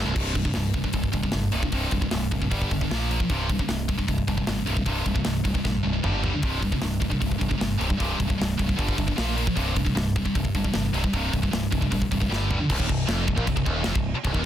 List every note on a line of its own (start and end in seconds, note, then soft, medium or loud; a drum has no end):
0.05 0.15 C1 medium
0.05 0.13 C2 medium
0.14 0.43 C1 medium
0.14 0.33 C2 medium
0.14 0.33 G2 loud
0.14 0.34 C3 medium
0.14 kick loud
0.14 crash loud
0.34 0.44 C2 medium
0.34 0.44 G2 medium
0.34 kick medium
0.34 open hi-hat medium
0.45 0.53 C2 medium
0.45 0.54 G2 medium
0.45 kick medium
0.54 0.82 C1 loud
0.54 0.72 C2 medium
0.54 0.73 G2 medium
0.54 snare loud
0.54 open hi-hat medium
0.74 0.83 C2 medium
0.74 0.83 G2 medium
0.74 kick medium
0.74 open hi-hat medium
0.84 0.92 C2 medium
0.84 0.93 G2 medium
0.84 kick medium
0.93 1.08 C1 medium
0.93 1.11 C2 medium
0.93 1.11 G2 medium
0.93 kick loud
0.93 open hi-hat medium
1.04 kick medium
1.12 1.27 G1 medium
1.12 1.22 C2 medium
1.12 1.21 G2 medium
1.12 kick medium
1.12 open hi-hat medium
1.23 1.31 C2 medium
1.23 1.31 G2 medium
1.23 kick medium
1.32 1.47 G1 medium
1.32 1.50 C2 medium
1.32 1.51 G2 medium
1.32 snare loud
1.32 open hi-hat medium
1.52 1.66 C1 medium
1.52 1.61 C2 medium
1.52 1.61 G2 medium
1.52 1.61 C3 medium
1.52 open hi-hat medium
1.62 1.71 C2 medium
1.62 1.71 G2 medium
1.62 kick medium
1.72 1.86 C1 medium
1.72 1.91 C2 medium
1.72 1.91 G2 loud
1.72 1.91 C3 medium
1.72 kick medium
1.72 open hi-hat medium
1.91 2.06 C1 medium
1.91 2.00 C2 medium
1.91 2.00 G2 medium
1.91 kick medium
1.91 open hi-hat medium
2.01 2.10 C2 medium
2.01 2.11 G2 medium
2.01 kick medium
2.11 2.26 C1 medium
2.11 2.29 C2 medium
2.11 2.29 G2 medium
2.11 snare loud
2.11 open hi-hat medium
2.31 2.46 G#1 medium
2.31 2.41 C2 medium
2.31 2.40 G2 medium
2.31 kick medium
2.31 open hi-hat medium
2.42 2.50 C2 medium
2.42 2.49 G2 medium
2.42 kick medium
2.51 2.65 G1 medium
2.51 2.69 G2 medium
2.51 2.70 D3 medium
2.51 2.70 G3 medium
2.51 kick loud
2.51 open hi-hat medium
2.62 kick medium
2.71 2.85 G1 medium
2.71 2.81 G2 medium
2.71 2.80 D3 medium
2.71 kick medium
2.71 open hi-hat medium
2.81 2.90 G2 medium
2.81 2.91 D3 medium
2.81 kick medium
2.91 3.18 A#1 medium
2.91 3.09 A#2 medium
2.91 3.09 F3 loud
2.91 3.10 A#3 loud
2.91 snare loud
2.91 open hi-hat medium
3.10 3.18 A#2 medium
3.10 3.19 F3 medium
3.10 3.19 A#3 loud
3.10 open hi-hat medium
3.20 3.30 A#2 medium
3.20 3.30 F3 medium
3.20 kick medium
3.30 3.57 C1 medium
3.30 3.48 C2 medium
3.30 3.48 G2 medium
3.30 3.49 C3 loud
3.30 kick medium
3.30 open hi-hat medium
3.49 3.59 C2 medium
3.49 3.58 G2 medium
3.49 kick medium
3.49 open hi-hat medium
3.59 3.67 C2 medium
3.59 3.68 G2 medium
3.59 kick medium
3.68 3.96 C1 medium
3.68 3.86 C2 medium
3.68 3.86 G2 medium
3.68 snare loud
3.68 open hi-hat medium
3.88 3.97 C2 medium
3.88 3.96 G2 medium
3.88 kick medium
3.88 open hi-hat soft
3.98 4.06 C2 medium
3.98 4.07 G2 medium
3.98 kick medium
4.08 4.22 C1 medium
4.08 4.25 C2 medium
4.08 4.26 G2 medium
4.08 kick loud
4.08 open hi-hat medium
4.18 kick medium
4.27 4.42 G1 medium
4.27 4.37 C2 medium
4.27 4.36 G2 medium
4.27 kick medium
4.27 open hi-hat medium
4.37 4.46 C2 medium
4.37 4.46 G2 medium
4.37 kick medium
4.47 4.61 G1 medium
4.47 4.65 C2 medium
4.47 4.65 G2 medium
4.47 snare loud
4.47 open hi-hat medium
4.66 4.81 C1 medium
4.66 4.75 C2 medium
4.66 4.75 G2 medium
4.66 4.76 C3 medium
4.66 open hi-hat medium
4.76 4.84 C2 medium
4.76 4.85 G2 medium
4.76 kick medium
4.86 5.00 C1 medium
4.86 5.04 C2 loud
4.86 5.04 G2 loud
4.86 5.05 C3 medium
4.86 kick medium
4.86 open hi-hat medium
5.05 5.20 C1 medium
5.05 5.14 C2 medium
5.05 5.13 G2 medium
5.05 kick medium
5.05 open hi-hat medium
5.14 5.23 C2 medium
5.14 5.23 G2 medium
5.14 kick medium
5.24 5.39 C1 medium
5.24 5.42 C2 medium
5.24 5.43 G2 medium
5.24 snare loud
5.24 open hi-hat medium
5.44 5.59 C1 medium
5.44 5.54 C2 medium
5.44 5.53 G2 medium
5.44 kick medium
5.44 open hi-hat medium
5.54 5.63 C2 medium
5.54 5.64 G2 medium
5.54 kick medium
5.64 5.78 A#1 medium
5.64 5.82 C2 medium
5.64 5.82 G2 medium
5.64 kick medium
5.64 snare medium
5.83 5.98 C1 medium
5.83 5.92 C2 medium
5.83 5.92 G2 medium
5.93 6.02 C2 medium
5.93 6.02 G2 medium
6.03 6.31 G1 medium
6.03 6.21 G2 medium
6.03 6.22 D3 medium
6.03 6.22 G3 medium
6.03 mid tom medium
6.22 6.31 G2 medium
6.22 6.31 D3 medium
6.22 6.32 G3 loud
6.22 floor tom medium
6.33 6.42 G2 medium
6.33 6.42 D3 medium
6.42 6.70 C1 medium
6.42 6.61 C2 medium
6.42 6.60 G2 medium
6.42 6.62 C3 loud
6.42 kick loud
6.42 open hi-hat medium
6.62 6.71 C2 medium
6.62 6.70 G2 medium
6.62 kick medium
6.62 open hi-hat medium
6.72 6.80 C2 medium
6.72 6.81 G2 medium
6.72 kick medium
6.81 7.10 C1 medium
6.81 6.99 C2 medium
6.81 6.99 G2 medium
6.81 snare loud
6.81 open hi-hat medium
7.00 7.09 C2 medium
7.00 7.09 G2 medium
7.00 kick medium
7.00 open hi-hat soft
7.10 7.20 C2 medium
7.10 7.19 G2 medium
7.10 kick medium
7.21 7.35 C1 medium
7.21 7.38 C2 medium
7.21 7.38 G2 medium
7.21 kick loud
7.21 open hi-hat medium
7.31 kick medium
7.39 7.55 G1 medium
7.39 7.49 C2 medium
7.39 7.48 G2 medium
7.39 kick medium
7.39 open hi-hat medium
7.49 7.57 C2 medium
7.49 7.58 G2 medium
7.49 kick medium
7.58 7.74 G1 medium
7.58 7.77 C2 medium
7.58 7.78 G2 medium
7.58 snare loud
7.58 open hi-hat medium
7.79 7.93 C1 medium
7.79 7.88 C2 medium
7.79 7.87 G2 medium
7.79 7.89 C3 medium
7.79 open hi-hat medium
7.89 7.97 C2 medium
7.89 7.98 G2 medium
7.89 kick medium
7.98 8.14 C1 loud
7.98 8.17 C2 medium
7.98 8.16 G2 loud
7.98 8.18 C3 medium
7.98 kick loud
7.98 open hi-hat medium
8.18 8.34 C1 medium
8.18 8.27 C2 medium
8.18 8.27 G2 medium
8.18 kick medium
8.18 open hi-hat medium
8.28 8.37 C2 medium
8.28 8.37 G2 medium
8.28 kick medium
8.38 8.54 C1 loud
8.38 8.56 C2 medium
8.38 8.56 G2 medium
8.38 snare loud
8.38 open hi-hat medium
8.58 8.73 C1 medium
8.58 8.66 C2 medium
8.58 8.66 G2 medium
8.58 kick medium
8.58 open hi-hat medium
8.67 8.76 C2 medium
8.67 8.75 G2 medium
8.67 kick medium
8.77 8.92 G1 medium
8.77 8.96 G2 medium
8.77 8.96 D3 loud
8.77 8.96 G3 loud
8.77 kick medium
8.77 open hi-hat medium
8.88 kick medium
8.97 9.12 G1 medium
8.97 9.06 G2 medium
8.97 9.06 D3 medium
8.97 kick medium
8.97 open hi-hat medium
9.07 9.16 G2 medium
9.07 9.17 D3 medium
9.07 kick medium
9.16 9.45 A#1 medium
9.16 9.34 A#2 loud
9.16 9.35 F3 medium
9.16 9.35 A#3 medium
9.16 snare loud
9.16 open hi-hat medium
9.35 9.45 A#2 medium
9.35 9.45 F3 loud
9.35 9.45 A#3 medium
9.35 open hi-hat medium
9.47 9.55 A#2 medium
9.47 9.56 F3 medium
9.47 kick medium
9.55 9.84 C1 medium
9.55 9.74 C2 medium
9.55 9.75 G2 loud
9.55 9.75 C3 loud
9.55 kick medium
9.55 open hi-hat medium
9.76 9.84 C2 medium
9.76 9.83 G2 medium
9.76 kick loud
9.76 open hi-hat medium
9.85 9.94 C2 medium
9.85 9.94 G2 medium
9.85 kick medium
9.95 10.23 C1 loud
9.95 10.13 C2 medium
9.95 10.13 G2 medium
9.95 snare loud
9.95 open hi-hat medium
10.16 10.24 C2 medium
10.16 10.23 G2 medium
10.16 kick medium
10.16 open hi-hat medium
10.25 10.34 C2 medium
10.25 10.35 G2 medium
10.25 kick medium
10.35 10.48 C1 medium
10.35 10.53 C2 medium
10.35 10.53 G2 medium
10.35 kick loud
10.35 open hi-hat medium
10.45 kick medium
10.55 10.68 G1 medium
10.55 10.64 C2 medium
10.55 10.64 G2 medium
10.55 kick medium
10.55 open hi-hat medium
10.64 10.72 C2 medium
10.64 10.73 G2 medium
10.64 kick medium
10.73 10.88 G1 medium
10.73 10.91 C2 medium
10.73 10.92 G2 medium
10.73 snare loud
10.73 open hi-hat medium
10.93 11.07 C1 medium
10.93 11.02 C2 medium
10.93 11.02 G2 medium
10.93 11.02 C3 medium
10.93 open hi-hat medium
11.04 11.12 C2 medium
11.04 11.13 G2 medium
11.04 kick medium
11.13 11.27 C1 medium
11.13 11.31 C2 medium
11.13 11.31 G2 medium
11.13 11.32 C3 loud
11.13 kick medium
11.13 open hi-hat medium
11.33 11.47 C1 medium
11.33 11.42 C2 medium
11.33 11.41 G2 medium
11.33 kick medium
11.33 open hi-hat medium
11.42 11.50 C2 medium
11.42 11.51 G2 medium
11.42 kick medium
11.51 11.65 C1 medium
11.51 11.69 C2 medium
11.51 11.70 G2 medium
11.51 snare loud
11.51 open hi-hat medium
11.72 11.86 C1 medium
11.72 11.81 C2 medium
11.72 11.80 G2 medium
11.72 kick medium
11.72 open hi-hat medium
11.81 11.90 C2 medium
11.81 11.90 G2 medium
11.81 kick medium
11.91 12.05 A#1 medium
11.91 12.09 C2 medium
11.91 12.09 G2 medium
11.91 kick medium
11.91 open hi-hat medium
12.02 kick medium
12.11 12.25 C1 medium
12.11 12.20 C2 medium
12.11 12.19 G2 medium
12.11 kick medium
12.11 open hi-hat medium
12.20 12.29 C2 medium
12.20 12.28 G2 medium
12.20 kick medium
12.30 12.58 G1 medium
12.30 12.48 G2 medium
12.30 12.48 D3 medium
12.30 12.48 G3 loud
12.30 snare medium
12.50 12.58 G2 medium
12.50 12.58 D3 medium
12.50 12.59 G3 medium
12.50 floor tom medium
12.59 12.69 G2 medium
12.59 12.69 D3 medium
12.69 12.79 C1 medium
12.69 12.78 C2 loud
12.69 kick loud
12.69 crash loud
12.69 crash medium
12.79 12.88 D#1 medium
12.79 12.88 D#2 medium
12.79 kick medium
12.88 13.07 C1 medium
12.88 13.04 C2 medium
12.88 kick loud
13.07 13.26 F1 loud
13.07 13.26 F2 loud
13.07 snare loud
13.07 crash medium
13.27 13.37 C1 medium
13.27 13.36 C2 medium
13.27 kick medium
13.36 13.46 A#1 medium
13.36 13.46 A#2 loud
13.36 kick medium
13.47 13.56 C1 medium
13.47 13.55 C2 medium
13.47 kick loud
13.47 crash medium
13.56 13.66 C1 medium
13.56 13.65 C2 medium
13.56 kick medium
13.66 13.84 D#1 loud
13.66 13.84 D#2 loud
13.66 kick medium
13.84 13.95 F1 loud
13.84 13.94 F2 loud
13.84 snare loud
13.84 crash medium
13.95 14.13 C1 medium
13.95 14.11 C2 medium
13.95 kick loud
14.15 muted distorted electric guitar stroke medium
14.15 muted picked electric bass stroke soft
14.24 14.34 C1 loud
14.24 14.33 C2 loud
14.24 kick loud
14.24 crash medium
14.33 14.44 D#1 medium
14.33 14.43 D#2 loud
14.33 kick medium